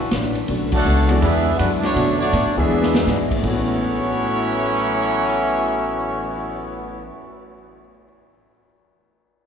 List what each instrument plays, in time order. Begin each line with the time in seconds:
Already playing: trombone section A#3 D4
0.11 upright bass A1, steel-string acoustic guitar F#2 E3 A#3 D4, kick, snare, hi-hat pedal, ride
0.35 ride
0.48 upright bass B1, grand piano D3 A3 B3 C#4 F#4, steel-string acoustic guitar B3 D4 A4 C#5, kick, ride
0.72 trombone section A3 D4 F#4, trumpet section D4 A4 C#5 F#5, kick, crash
0.85 upright bass C#2, steel-string acoustic guitar B3 D4 A4 C#5, hi-hat pedal
1.09 grand piano E3 G#3 B3 D4 F#4, trombone section F#3 A3 D4, trumpet section A3 C#4 F#4 D5, ride
1.22 upright bass E2, steel-string acoustic guitar E3 G#3 D4 F#4, trombone section G#3 B3 E4, trumpet section D4 G#4 B4 E5, kick, ride
1.57 upright bass F#2, trombone section D3 G#3 B3, steel-string acoustic guitar E3 G#3 D4, trumpet section G#3 D4 F#4 B4, kick, hi-hat pedal, ride
1.61 steel-string acoustic guitar F#4
1.81 trombone section F#3 A3 D4, trumpet section A3 D4 F#4 C#5, snare, ride
1.95 upright bass B2, grand piano D3 A3 B3 C#4 F#4, steel-string acoustic guitar B3 D4 A4, kick, ride
1.99 steel-string acoustic guitar C#5
2.19 trombone section F#3 A3 D4, trumpet section A3 F#4 C#5 D5
2.33 upright bass A2, steel-string acoustic guitar B3 D4 A4 C#5, kick, hi-hat pedal, ride
2.45 upright bass F#2
2.56 upright bass D2, grand piano E3 G#3 B3 D4 G#4, trombone section G#3 B3 E4, trumpet section D4 G#4 B4 E5
2.70 upright bass E2, steel-string acoustic guitar E3 G#3 D4 F#4
2.82 snare
2.95 snare
3.07 upright bass G#2, steel-string acoustic guitar E3 G#3 D4 F#4, snare, hi-hat pedal
3.31 kick, crash
3.38 grand piano A2 A3, steel-string acoustic guitar A2
3.43 upright bass A1, trombone section A2 E3 F#3 C#4, steel-string acoustic guitar F#3, grand piano B3, trumpet section B3 E4 F#4 C#5, kick, crash
3.47 grand piano C#4 F#4
3.53 steel-string acoustic guitar B3
3.58 steel-string acoustic guitar C#4
3.67 cymbal swell
3.80 grand piano A4
3.88 grand piano C#5
3.95 grand piano F#5
4.04 grand piano A5
4.14 grand piano C#6
4.25 grand piano F#6